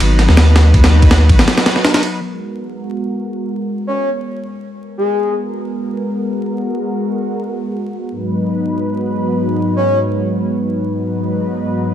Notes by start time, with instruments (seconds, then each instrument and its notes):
Already playing: analog synth pad F#3 B3 D#4 B4
0.00 sub bass G#1, ride
0.19 snare, ride
0.29 sub bass D#2, snare
0.37 snare, ride
0.56 snare, ride
0.74 analog synth pad F#3 B3 D#4 B4, kick, ride
0.84 snare, ride
1.02 kick, ride
1.11 snare, ride
1.29 sub bass G#1, analog synth pad F#3 B3 D#4 B4, kick, ride
1.39 snare, ride
1.48 snare, ride
1.58 snare, ride
1.66 snare, ride
1.76 snare
1.85 snare, ride
1.94 snare, ride
2.03 ride
2.21 analog synth pad G#3 B3 F#4 A#4
3.87 soft synth lead C#5
4.98 soft synth lead G#4
5.16 analog synth pad G#3 B3 F#4 A#4
8.10 analog synth pad G#2 F#3 B3 D#4 B4
9.76 soft synth lead C#5
11.05 analog synth pad G#2 F#3 B3 D#4 B4